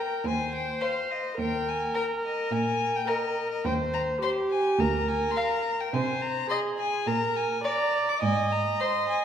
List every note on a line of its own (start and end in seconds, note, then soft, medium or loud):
0.00 0.28 A#4 soft
0.00 0.25 G5 medium
0.25 0.70 D#2 soft
0.25 1.38 C5 medium
0.25 0.53 G#5 medium
0.55 0.82 G5 medium
0.81 0.89 C5 soft
0.81 1.12 F5 medium
1.11 1.38 D#5 medium
1.38 1.83 D#2 soft
1.38 3.05 A#4 medium
1.38 1.69 G5 medium
1.68 1.95 G#5 medium
1.94 2.02 A#4 soft
1.94 2.04 G5 medium
2.25 2.53 D#5 medium
2.51 2.96 A#2 medium
2.51 2.97 G#5 medium
2.95 3.10 G5 medium
3.07 3.15 A#4 soft
3.07 3.67 A#4 medium
3.07 3.51 D#5 medium
3.51 3.64 D#5 medium
3.65 4.10 D#2 medium
3.65 4.21 C5 medium
3.65 3.73 G5 medium
3.93 4.01 A#5 medium
4.22 4.81 G4 soft
4.22 4.30 C5 soft
4.22 4.30 C6 medium
4.50 4.81 G#5 medium
4.79 5.24 D2 medium
4.79 5.93 A#4 medium
4.79 5.09 A#5 medium
5.08 5.32 G#5 medium
5.31 5.38 C6 soft
5.36 5.44 F5 soft
5.36 5.82 A#5 medium
5.80 5.95 G5 medium
5.93 6.39 C3 medium
5.93 6.49 C5 medium
5.93 6.23 G#5 medium
6.22 6.49 A#5 medium
6.49 7.08 G#4 medium
6.49 6.58 D#5 soft
6.49 6.57 C6 medium
6.79 7.08 G#5 medium
7.07 7.52 A#2 medium
7.07 7.63 A#4 medium
7.07 7.37 A#5 medium
7.36 7.64 G#5 medium
7.64 8.21 D5 medium
7.64 7.73 D5 soft
7.64 8.10 A#5 medium
8.09 8.22 D6 medium
8.22 8.68 G#2 medium
8.22 9.25 D#5 medium
8.22 8.53 G#5 medium
8.52 8.82 A#5 medium
8.80 8.88 C5 soft
8.80 9.08 C6 medium
9.08 9.25 G#5 medium